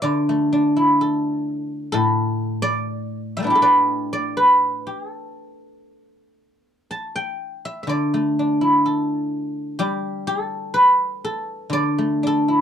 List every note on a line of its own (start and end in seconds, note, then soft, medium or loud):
0.00 2.89 D3 medium
0.00 0.99 G3 soft
0.00 0.41 G4 medium
0.00 0.76 A4 medium
0.00 1.09 B4 medium
0.00 1.87 D5 medium
0.00 1.50 E5 medium
0.29 2.19 A3 medium
0.53 2.43 D4 medium
0.76 2.67 E4 soft
1.01 1.91 A4 medium
1.92 4.86 A2 medium
1.92 3.55 A4 medium
2.62 3.62 D5 loud
3.37 3.61 G3 soft
3.37 6.73 A3 soft
3.37 5.09 E5 medium
3.43 6.53 B3 soft
3.43 6.24 D4 soft
3.47 6.07 E4 soft
3.47 4.87 G4 medium
3.55 4.86 A4 medium
3.62 4.37 B4 medium
3.62 4.12 D5 medium
4.13 5.97 D5 medium
4.37 6.41 B4 medium
4.87 5.09 G4 medium
5.09 7.06 A4 medium
6.91 8.36 A5 medium
7.16 8.71 G5 medium
7.65 7.83 E5 medium
7.83 9.55 E5 soft
7.87 10.74 D3 medium
7.87 9.74 D5 medium
8.14 10.04 A3 soft
8.39 10.29 D4 soft
8.61 10.51 E4 soft
8.86 10.26 A4 soft
9.79 12.61 G3 medium
9.79 12.14 G4 medium
10.27 11.24 A4 medium
10.74 12.61 B4 medium
11.25 12.26 A4 medium
11.70 12.61 D3 medium
11.70 12.61 D5 loud
11.98 12.61 A3 soft
12.23 12.61 D4 soft
12.23 12.61 A4 medium
12.48 12.61 E4 soft